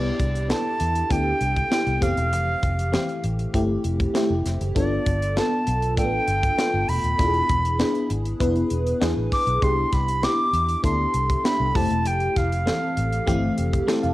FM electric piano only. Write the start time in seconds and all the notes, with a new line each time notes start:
Already playing: B3 D4 E4 G4
0.49 B3 D4 E4 A4
1.10 B3 D4 E4 G4
1.71 B3 D4 E4 G4
2.01 E3 A3 C4 G4
2.92 E3 A3 C4 G4
3.53 A3 C4 E4 G4
4.14 A3 C4 E4 G4
4.75 B3 D4 F4 A4
5.36 B3 D4 F4 A4
5.97 A3 D4 F4 A4
6.04 B3
6.58 B3 D4 F4 A4
7.18 B3 D4 E4 F4
7.26 G#4
7.79 B3 D4 E4 G#4
8.40 B3 D4 E4 B4
9.00 B3 D4 E4 G#4
9.61 B3 D4 E4 G4
10.22 B3 D4 E4 G4
10.83 B3 D4 E4 A4
11.44 B3 D4 E4 G4
11.74 A3 C4 E4 G4
12.65 E3 A3 C4 A4
13.27 E3 A3 C4 G4
13.87 E3 A3 C4 G4 A5
14.03 F5